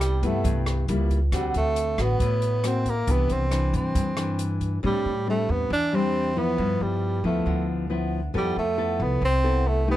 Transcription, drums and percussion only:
0.01 cross-stick, closed hi-hat
0.23 kick, closed hi-hat
0.45 kick, closed hi-hat
0.66 cross-stick, closed hi-hat
0.88 closed hi-hat
1.10 kick, closed hi-hat
1.32 kick, cross-stick, closed hi-hat
1.54 closed hi-hat
1.76 closed hi-hat
1.98 kick, cross-stick, closed hi-hat
2.20 kick, closed hi-hat
2.42 closed hi-hat
2.64 cross-stick, closed hi-hat
2.86 kick, closed hi-hat
3.07 kick, closed hi-hat
3.29 closed hi-hat
3.51 cross-stick, closed hi-hat
3.73 kick, closed hi-hat
3.95 kick, closed hi-hat
4.17 cross-stick, closed hi-hat
4.39 closed hi-hat
4.61 kick, closed hi-hat

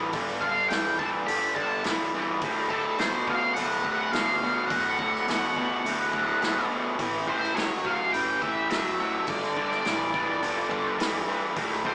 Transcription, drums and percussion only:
0.13 kick, open hi-hat
0.29 snare
0.42 kick
0.70 snare, open hi-hat
0.99 kick
1.28 open hi-hat
1.56 kick
1.84 snare, open hi-hat
2.41 kick, open hi-hat
2.70 kick
2.98 snare, open hi-hat
3.28 kick
3.56 open hi-hat
3.85 kick
4.13 snare, open hi-hat
4.70 kick, open hi-hat
4.99 kick
5.16 snare
5.28 snare, open hi-hat
5.56 kick
5.86 open hi-hat
6.13 kick
6.42 snare, open hi-hat
6.99 kick, open hi-hat
7.28 kick
7.43 snare
7.57 snare, open hi-hat
7.85 kick
8.14 open hi-hat
8.42 kick
8.70 snare, open hi-hat
9.27 kick, open hi-hat
9.43 snare
9.57 kick
9.71 snare
9.85 snare, open hi-hat
10.14 kick
10.43 open hi-hat
10.71 kick
11.00 snare, open hi-hat
11.56 kick, open hi-hat
11.72 snare
11.85 kick

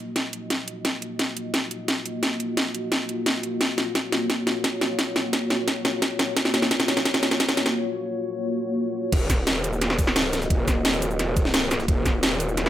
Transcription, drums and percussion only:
0.16 kick, snare, closed hi-hat
0.33 closed hi-hat
0.50 kick, snare, closed hi-hat
0.68 closed hi-hat
0.85 kick, snare, closed hi-hat
1.02 closed hi-hat
1.19 kick, snare, closed hi-hat
1.37 closed hi-hat
1.54 kick, snare, closed hi-hat
1.71 closed hi-hat
1.88 kick, snare, closed hi-hat
2.06 closed hi-hat
2.23 kick, snare, closed hi-hat
2.40 closed hi-hat
2.57 kick, snare, closed hi-hat
2.75 closed hi-hat
2.92 kick, snare, closed hi-hat
3.09 closed hi-hat
3.26 kick, snare, closed hi-hat
3.43 closed hi-hat
3.61 kick, snare, closed hi-hat
3.78 snare, closed hi-hat
3.95 kick, snare, closed hi-hat
4.12 snare, closed hi-hat
4.30 kick, snare, closed hi-hat
4.47 snare, closed hi-hat
4.64 kick, snare, closed hi-hat
4.81 snare, closed hi-hat
4.99 kick, snare, closed hi-hat
5.16 snare, closed hi-hat
5.33 kick, snare, closed hi-hat
5.50 snare, closed hi-hat
5.68 kick, snare, closed hi-hat
5.85 snare, closed hi-hat
6.02 kick, snare, closed hi-hat
6.19 snare, closed hi-hat
6.37 kick, snare, closed hi-hat
6.45 snare
6.54 snare, closed hi-hat
6.62 snare
6.71 kick, snare, closed hi-hat
6.80 snare
6.88 snare, closed hi-hat
6.97 snare
7.05 kick, snare, closed hi-hat
7.14 snare
7.23 snare, closed hi-hat
7.31 snare
7.40 kick, snare, closed hi-hat
7.49 snare
7.57 snare, closed hi-hat
7.66 snare
9.12 kick, closed hi-hat, crash, ride
9.30 kick, snare, closed hi-hat, ride, shaker
9.47 snare, closed hi-hat, ride
9.64 closed hi-hat, ride, shaker
9.73 shaker
9.81 snare, closed hi-hat, ride
9.90 snare
9.99 kick, closed hi-hat, open hi-hat, shaker
10.07 snare
10.16 snare, closed hi-hat, ride
10.33 snare, closed hi-hat, ride, shaker
10.42 snare, shaker
10.50 kick, closed hi-hat, ride
10.68 kick, snare, closed hi-hat, ride, shaker
10.85 snare, closed hi-hat, ride
10.94 shaker
11.02 closed hi-hat, ride, shaker
11.11 shaker
11.19 snare, closed hi-hat, ride
11.37 kick, closed hi-hat, ride, shaker
11.45 snare
11.54 snare, closed hi-hat, ride
11.71 snare, closed hi-hat, ride, shaker
11.80 snare, shaker
11.88 kick, closed hi-hat, ride
12.06 kick, snare, closed hi-hat, ride, shaker
12.23 snare, closed hi-hat, ride
12.40 closed hi-hat, ride, shaker
12.49 shaker
12.57 snare, closed hi-hat, ride
12.66 snare

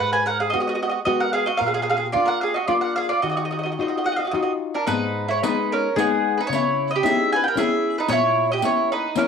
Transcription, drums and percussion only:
4.87 riq
5.44 riq
5.98 riq
6.53 riq
7.06 riq
7.57 riq
8.08 riq
8.62 riq
9.15 riq

